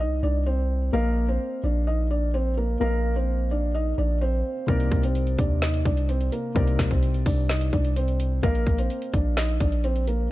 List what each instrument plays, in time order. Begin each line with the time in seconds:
0.00 felt piano D#4 D#5
0.05 808-style bass C2
0.23 808-style bass C2, felt piano D4 D5
0.46 felt piano C4 C5
0.93 808-style bass A#1, grand piano A#3 A#4 D#5 F5, felt piano A#3 A#4
1.28 felt piano C4 C5
1.64 808-style bass A#1, felt piano D4 D5
1.87 felt piano D#4 D#5
2.11 felt piano D4 D5
2.34 felt piano C4 C5
2.57 felt piano A#3 A#4
2.80 808-style bass A#1, grand piano A#3 A#4 D#5 F5, felt piano A#3 A#4
3.16 felt piano C4 C5
3.51 felt piano D4 D5
3.75 felt piano D#4 D#5
3.98 808-style bass A#1, felt piano D4 D5
4.21 felt piano C4 C5
4.67 808-style bass C2, grand piano C3 C4 D#4 D5, felt piano A#3 A#4, kick, closed hi-hat
4.80 closed hi-hat
4.92 808-style bass C2, kick, closed hi-hat
5.03 felt piano C4 C5, closed hi-hat
5.15 closed hi-hat
5.27 closed hi-hat
5.39 808-style bass D#2, felt piano D4 D5, kick, closed hi-hat
5.62 felt piano D#4 D#5, snare, closed hi-hat
5.74 closed hi-hat
5.85 808-style bass C2, felt piano D4 D5, kick, closed hi-hat
5.97 closed hi-hat
6.09 felt piano C4 C5, closed hi-hat
6.21 closed hi-hat
6.32 felt piano A#3 A#4, closed hi-hat
6.55 808-style bass C2, grand piano C3 C4 D#4 D5, felt piano A#3 A#4, kick, closed hi-hat
6.67 closed hi-hat
6.79 808-style bass C2, kick, snare, closed hi-hat
6.91 felt piano C4 C5, kick, closed hi-hat
7.03 closed hi-hat
7.14 closed hi-hat
7.26 808-style bass C2, felt piano D4 D5, kick, open hi-hat
7.49 felt piano D#4 D#5, snare, closed hi-hat
7.61 closed hi-hat
7.73 808-style bass C2, felt piano D4 D5, kick, closed hi-hat
7.85 closed hi-hat
7.96 felt piano C4 C5, closed hi-hat
8.08 closed hi-hat
8.20 closed hi-hat
8.43 808-style bass A#1, grand piano A#3 A#4 D#5 F5, felt piano A#3 A#4, kick, closed hi-hat
8.55 closed hi-hat
8.67 808-style bass A#1, kick, closed hi-hat
8.78 felt piano C4 C5, closed hi-hat
8.90 closed hi-hat
9.02 closed hi-hat
9.14 808-style bass A#1, felt piano D4 D5, kick, closed hi-hat
9.37 felt piano D#4 D#5, snare, closed hi-hat
9.49 closed hi-hat
9.60 808-style bass A#1, felt piano D4 D5, kick, closed hi-hat
9.72 closed hi-hat
9.84 felt piano C4 C5, closed hi-hat
9.96 closed hi-hat
10.07 felt piano A#3 A#4, closed hi-hat